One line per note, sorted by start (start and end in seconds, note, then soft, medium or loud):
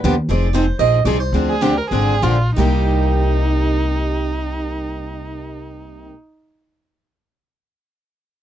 0.00 0.28 D#2 medium
0.00 0.14 D3 medium
0.00 0.15 B4 medium
0.05 0.14 F3 medium
0.05 0.14 B3 medium
0.05 0.14 D4 medium
0.05 0.15 G4 loud
0.29 0.69 F1 medium
0.29 0.47 F3 medium
0.29 0.47 C4 medium
0.29 0.47 D#4 medium
0.29 0.47 G#4 medium
0.29 0.54 D5 medium
0.54 0.64 F3 medium
0.54 0.64 C4 medium
0.54 0.65 D#4 medium
0.54 0.65 G#4 medium
0.54 0.79 C5 medium
0.79 1.01 A#1 medium
0.79 0.98 F3 medium
0.79 0.98 C4 medium
0.79 0.99 D#4 medium
0.79 0.99 G#4 medium
0.79 1.05 D#5 medium
1.04 1.28 C2 medium
1.04 1.16 F3 medium
1.04 1.17 C4 medium
1.04 1.17 D#4 medium
1.04 1.17 G#4 loud
1.04 1.20 D5 medium
1.20 2.22 C5 medium
1.32 1.79 D2 medium
1.32 1.53 D3 medium
1.32 1.53 F3 medium
1.32 1.53 C4 medium
1.32 1.54 D4 medium
1.32 1.54 G#4 medium
1.49 1.63 G#4 medium
1.62 1.73 D3 medium
1.62 1.73 F3 medium
1.62 1.73 C4 medium
1.62 1.73 D4 loud
1.62 1.79 G4 medium
1.62 1.74 G#4 loud
1.78 1.89 A#4 medium
1.90 2.18 G#1 medium
1.90 2.13 D3 medium
1.90 2.14 F3 medium
1.90 2.14 C4 medium
1.90 2.14 D4 medium
1.90 2.24 G#4 medium
1.90 2.14 G#4 medium
2.22 2.51 A#1 medium
2.22 2.36 D3 medium
2.22 2.36 F3 medium
2.22 2.36 C4 medium
2.22 2.36 D4 medium
2.22 2.56 F4 medium
2.22 2.36 G#4 medium
2.56 6.08 C2 medium
2.56 6.12 C3 medium
2.56 6.13 G3 medium
2.56 6.14 A#3 medium
2.56 6.08 D#4 medium
2.56 6.15 D#4 medium
2.56 6.15 G4 medium